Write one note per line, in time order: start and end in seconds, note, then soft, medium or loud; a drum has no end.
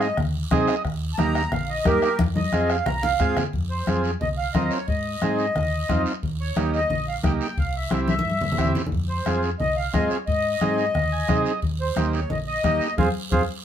0.00 0.11 G#2 medium
0.00 0.17 D#5 loud
0.00 bombo rim medium
0.00 short guiro medium
0.17 0.45 D#2 medium
0.17 bombo rim medium
0.17 high conga soft
0.17 low conga medium
0.17 long guiro medium
0.51 0.65 C3 medium
0.51 0.75 C4 medium
0.51 0.75 D#4 medium
0.51 0.75 G#4 loud
0.51 0.83 D#5 medium
0.51 bombo low medium
0.51 bombo rim medium
0.51 high conga medium
0.51 short guiro medium
0.68 bombo rim medium
0.68 short guiro medium
0.85 1.12 D#2 medium
0.85 bombo low medium
0.85 bombo rim medium
0.85 high conga soft
0.85 long guiro medium
1.14 1.16 A5 medium
1.18 1.45 D#2 medium
1.18 1.42 A#3 medium
1.18 1.42 D#4 medium
1.18 1.42 G4 medium
1.18 1.51 A#5 loud
1.18 bombo rim medium
1.18 high conga medium
1.18 short guiro medium
1.35 bombo rim medium
1.35 short guiro medium
1.52 1.79 A#1 medium
1.52 1.69 F5 medium
1.52 bombo rim medium
1.52 high conga soft
1.52 low conga medium
1.52 long guiro medium
1.69 1.86 D#5 loud
1.85 1.99 G2 medium
1.85 2.09 A#3 medium
1.85 2.09 D#4 medium
1.85 2.17 G4 medium
1.85 2.09 G4 medium
1.85 2.19 A#4 loud
1.85 bombo low medium
1.85 bombo rim medium
1.85 high conga medium
1.85 short guiro medium
2.02 bombo rim medium
2.02 short guiro medium
2.19 2.46 F2 loud
2.19 bombo low medium
2.19 bombo rim medium
2.19 high conga medium
2.19 long guiro medium
2.36 2.69 D#5 medium
2.36 high conga loud
2.52 2.80 F2 medium
2.52 2.76 C4 medium
2.52 2.77 F4 medium
2.52 2.77 G#4 medium
2.52 bombo rim medium
2.52 high conga medium
2.52 short guiro medium
2.70 2.86 F5 medium
2.70 bombo rim medium
2.70 short guiro medium
2.86 3.13 C2 medium
2.86 3.02 A#5 loud
2.86 bombo rim medium
2.86 low conga medium
2.86 long guiro medium
3.02 3.36 F5 loud
3.02 low conga medium
3.20 3.33 G#2 medium
3.20 3.43 C4 medium
3.20 3.44 F4 medium
3.20 3.44 G#4 medium
3.20 bombo low medium
3.20 bombo rim medium
3.20 short guiro medium
3.37 bombo rim medium
3.37 low conga medium
3.37 short guiro medium
3.53 3.81 F2 medium
3.53 bombo low medium
3.53 high conga soft
3.53 long guiro medium
3.70 4.02 C5 medium
3.87 4.14 F2 medium
3.87 4.11 C4 medium
3.87 4.11 F4 medium
3.87 4.11 G#4 medium
3.87 bombo rim medium
3.87 high conga medium
3.87 short guiro medium
4.04 short guiro medium
4.21 4.48 C2 medium
4.21 4.29 D#5 medium
4.21 high conga soft
4.21 low conga medium
4.21 long guiro medium
4.38 4.53 F5 loud
4.54 4.68 D#2 medium
4.54 4.78 C4 medium
4.54 4.78 F4 medium
4.54 4.79 A#4 medium
4.54 4.71 D#5 medium
4.54 bombo low medium
4.54 bombo rim medium
4.54 high conga medium
4.54 short guiro medium
4.71 4.87 C#5 medium
4.71 short guiro medium
4.88 5.15 G#2 medium
4.88 6.02 D#5 medium
4.88 bombo low medium
4.88 high conga soft
4.88 long guiro medium
5.21 5.49 G#2 medium
5.21 5.46 C4 medium
5.21 5.46 D#4 medium
5.21 5.46 G#4 medium
5.21 bombo rim medium
5.21 high conga medium
5.21 short guiro medium
5.39 short guiro medium
5.55 5.82 D#2 medium
5.55 bombo rim medium
5.55 high conga soft
5.55 low conga medium
5.55 long guiro medium
5.89 6.03 F2 medium
5.89 6.13 C4 medium
5.89 6.13 D#4 medium
5.89 6.13 F4 medium
5.89 bombo low medium
5.89 bombo rim medium
5.89 high conga medium
5.89 short guiro medium
6.06 short guiro medium
6.23 6.50 D#2 medium
6.23 bombo low medium
6.23 high conga soft
6.23 long guiro medium
6.40 6.71 C#5 medium
6.56 6.83 D#2 medium
6.56 6.80 A#3 medium
6.56 6.80 D#4 medium
6.56 6.80 G4 medium
6.56 bombo rim medium
6.56 high conga medium
6.56 short guiro medium
6.74 7.05 D#5 loud
6.74 short guiro medium
6.90 7.17 A#1 medium
6.90 high conga soft
6.90 low conga medium
6.90 long guiro medium
7.08 7.15 F5 loud
7.23 7.37 C#2 medium
7.23 7.47 A#3 medium
7.23 7.47 D#4 medium
7.23 7.47 G4 medium
7.23 7.32 G5 loud
7.23 bombo low medium
7.23 bombo rim medium
7.23 high conga medium
7.23 short guiro medium
7.41 7.57 G5 medium
7.41 short guiro medium
7.57 7.85 C2 loud
7.57 7.74 F5 medium
7.57 bombo low medium
7.57 high conga soft
7.57 long guiro medium
7.76 7.91 E5 medium
7.90 8.18 C2 medium
7.90 8.15 C4 medium
7.90 8.15 E4 medium
7.90 8.15 G4 medium
7.90 8.00 E5 medium
7.90 bombo rim medium
7.90 high conga medium
7.90 short guiro medium
8.08 8.72 E5 medium
8.08 high conga loud
8.08 short guiro medium
8.19 high conga medium
8.25 8.52 G2 medium
8.25 long guiro medium
8.30 high conga medium
8.41 low conga medium
8.52 low conga medium
8.58 8.72 E2 medium
8.58 8.82 C4 medium
8.58 8.82 E4 medium
8.58 8.82 G4 medium
8.58 bombo low medium
8.58 bombo rim medium
8.58 short guiro medium
8.64 low conga medium
8.75 low conga medium
8.75 short guiro medium
8.87 low conga medium
8.92 9.19 F2 medium
8.92 bombo low medium
8.92 high conga soft
8.92 long guiro medium
9.09 9.41 C5 medium
9.26 9.53 F2 medium
9.26 9.50 C4 medium
9.26 9.50 F4 medium
9.26 9.50 G#4 medium
9.26 bombo rim medium
9.26 high conga medium
9.26 short guiro medium
9.43 short guiro medium
9.59 9.87 C2 medium
9.59 9.75 D#5 medium
9.59 high conga soft
9.59 low conga medium
9.59 long guiro medium
9.76 9.92 F5 loud
9.93 10.07 G#2 medium
9.93 10.17 C4 medium
9.93 10.17 F4 medium
9.93 10.18 G#4 medium
9.93 10.09 D#5 medium
9.93 bombo low medium
9.93 bombo rim medium
9.93 high conga medium
9.93 short guiro medium
10.10 10.18 C#5 medium
10.10 short guiro medium
10.26 10.55 G#2 medium
10.26 11.41 D#5 medium
10.26 bombo low medium
10.26 high conga soft
10.26 long guiro medium
10.61 10.88 G#2 medium
10.61 10.85 C4 medium
10.61 10.85 D#4 medium
10.61 10.85 G#4 medium
10.61 bombo rim medium
10.61 high conga medium
10.61 short guiro medium
10.78 short guiro medium
10.95 11.22 D#2 medium
10.95 bombo rim medium
10.95 high conga soft
10.95 low conga medium
10.95 long guiro medium
11.12 11.28 G#5 medium
11.28 11.42 C3 medium
11.28 11.52 C4 medium
11.28 11.53 D#4 medium
11.28 11.53 G#4 medium
11.28 11.60 D#5 medium
11.28 bombo low medium
11.28 bombo rim medium
11.28 high conga medium
11.28 short guiro medium
11.46 short guiro medium
11.62 11.90 D#2 medium
11.62 bombo low medium
11.62 high conga soft
11.62 long guiro medium
11.80 12.12 C5 medium
11.96 12.23 D#2 medium
11.96 12.20 A#3 medium
11.96 12.20 D#4 medium
11.96 12.21 G4 medium
11.96 bombo rim medium
11.96 high conga medium
11.96 short guiro medium
12.13 12.29 C#5 medium
12.13 short guiro medium
12.30 12.57 A#1 medium
12.30 12.38 D#5 medium
12.30 high conga soft
12.30 low conga medium
12.30 long guiro medium
12.47 12.94 D#5 loud
12.64 12.78 D#2 medium
12.64 12.88 A#3 medium
12.64 12.88 D#4 medium
12.64 12.88 G4 medium
12.64 bombo low medium
12.64 bombo rim medium
12.64 high conga medium
12.64 short guiro medium
12.81 short guiro medium
12.97 13.11 F2 medium
12.97 13.09 C4 medium
12.97 13.09 F4 loud
12.97 13.08 G#4 medium
12.97 13.09 G#4 medium
12.97 13.09 C5 medium
12.97 13.09 F5 medium
12.97 bombo low medium
12.97 high conga loud
12.97 long guiro medium
13.31 13.44 F2 medium
13.31 13.43 C4 medium
13.31 13.43 F4 medium
13.31 13.42 G#4 medium
13.31 13.43 G#4 medium
13.31 13.43 C5 medium
13.31 13.43 F5 medium
13.31 bombo low loud
13.31 high conga medium
13.31 long guiro medium